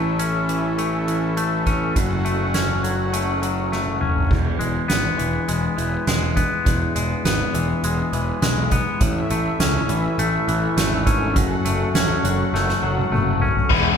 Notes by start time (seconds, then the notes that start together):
Already playing: A1 A2 A3 C#4 E4 A4 E5
0.19 C#4, closed hi-hat
0.49 E3, closed hi-hat
0.78 A3, closed hi-hat
1.08 E3, closed hi-hat
1.37 A3, closed hi-hat
1.67 C#4, kick, closed hi-hat
1.96 F#1 F#2 C#4 F#4 F#5, kick, closed hi-hat
2.25 A3, closed hi-hat
2.54 C#4, snare, closed hi-hat
2.83 F#3, closed hi-hat
3.13 A3, closed hi-hat
3.42 F#3, closed hi-hat
3.72 A3, snare
3.86 high tom
4.01 C#4, mid tom
4.16 floor tom
4.30 E1 E2, kick, crash
4.59 E1 G#3, closed hi-hat
4.88 G#1 B3, snare, closed hi-hat
5.18 E1 E3, closed hi-hat
5.48 E1 G#3, closed hi-hat
5.77 E1 E3, closed hi-hat
6.07 E1 G#3, snare, closed hi-hat
6.36 B3, kick, closed hi-hat
6.65 E1 E2, kick, closed hi-hat
6.96 E1 G#3, closed hi-hat
7.25 G#1 B3, snare, closed hi-hat
7.54 E1 E3, closed hi-hat
7.83 E1 G#3, closed hi-hat
8.13 E1 E3, closed hi-hat
8.42 B1 G#3, snare, closed hi-hat
8.71 B3, kick, closed hi-hat
9.01 A1 A2 C#4 E4 A4 E5, kick, closed hi-hat
9.30 A1 A3, closed hi-hat
9.59 C#2 C#4, snare, closed hi-hat
9.88 A1 E3, closed hi-hat
10.18 A1 A3, closed hi-hat
10.48 A1 E3, closed hi-hat
10.77 G#1 A3, snare, closed hi-hat
11.07 C#4, kick, closed hi-hat
11.36 F#1 F#2 F#4 F#5, kick, closed hi-hat
11.65 F#1 A3, closed hi-hat
11.94 A1 C#4, snare, closed hi-hat
12.24 F#1 F#3, closed hi-hat
12.53 F#1 A3, snare
12.69 snare
12.83 F#1 F#3
12.98 high tom
13.12 F#1 A3, mid tom
13.42 C#4, floor tom
13.57 floor tom
13.69 E1 E2 E3 G#3 B3 E4 G#4 E5, kick, crash